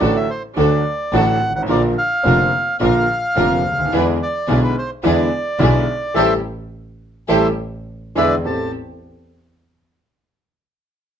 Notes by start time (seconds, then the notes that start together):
Already playing: D5
0.00 A1 A2 D3 F#3 A3 D4 F#4 A4
0.16 E5
0.30 C5
0.57 D2 D3 F#3 A3 D4 F#4 A4 D5
1.13 A1 A2 D3 F#3 A3 D4 F#4 A4 F#5
1.41 G#1
1.49 G1
1.56 G#1 F#5
1.62 A1
1.69 A#1 A#2 D3 F3 A#3 D4 F4 A#4 D5
1.98 F5
2.24 F1 F2 D3 F3 A#3 D4 F4 A#4
2.80 A#1 A#2 D3 F3 A#3 D4 F4 A#4 F5
3.36 F1 F2 D3 F3 A#3 D4 F4 A#4
3.65 D2
3.71 C#2
3.79 D2
3.85 D#2
3.93 E2 D3 E3 G#3 B3 D4 E4 G#4 B4
4.23 D5
4.48 B1 B2 D3 G#3 B3 D4 E4 G#4
4.64 B4
4.78 C5
5.03 E2 D3 E3 G#3 B3 D4 E4 G#4 D5
5.59 B1 B2 D3 G#3 B3 D4 E4 G#4
6.14 A1 E3 G3 A3 E4 G4 A4 C5 E5
7.28 A1 E3 G3 A3 E4 G4 A4 C5 E5
8.15 E2 D3 E3 G#3 D4 E4 G#4 B4 D5 E5
8.44 A1 A3 C4 G4 A4 A5